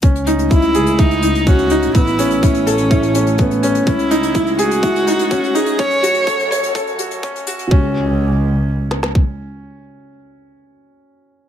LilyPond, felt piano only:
\new Staff \with { instrumentName = "Felt piano" } { \time 4/4 \key cis \minor \tempo 4 = 125 cis'8 dis'8 e'8 gis'8 e'8 dis'8 cis'8 dis'8 | b8 cis'8 e'8 a'8 e'8 cis'8 b8 cis'8 | cis'8 dis'8 e'8 gis'8 e'8 dis'8 cis'8 dis'8 | cis'8 fis'8 a'8 cis''8 a'8 fis'8 cis'8 fis'8 |
cis'8 r2. r8 | r1 | }